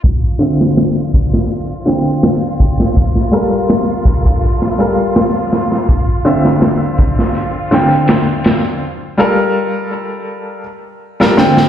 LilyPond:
<<
  \new Staff \with { instrumentName = "Upright piano" } { \time 4/4 \key d \minor \tempo 4 = 82 r8 <d c' f' e''>2 <d c' f' g''>4. | r8 <g f' a' bes'>2 <g f' a' bes'>4. | r8 <d c' f' e''>2 <d c' f' g''>4. | r8 <g f' a' bes'>2 r8. <g f' a' bes'>16 <d c' f' g''>8 | }
  \new Staff \with { instrumentName = "Violin section" } { \time 4/4 \key d \minor f'1~ | f'1~ | f'1 | r1 | }
  \new DrumStaff \with { instrumentName = "Drums" } \drummode { \time 4/4 <hh bd>8 hh16 sn16 <hh sn>16 hh16 <hh bd>16 sn16 hh8 <hh sn>16 hh16 <hh sn>8 <hh bd>16 sn16 | <hh bd>16 sn16 hh8 <hh sn>8 <hh bd>16 bd16 hh16 sn16 hh8 <hho sn>8 <hh sn>16 sn16 | <hh bd>8 hh16 sn16 <hh sn>16 hh16 <hh bd>16 sn16 hh8 <hh sn>16 hh16 <hh sn>8 <hh sn>16 hh16 | r4 r4 r4 r16 sn16 sn16 sn16 | }
>>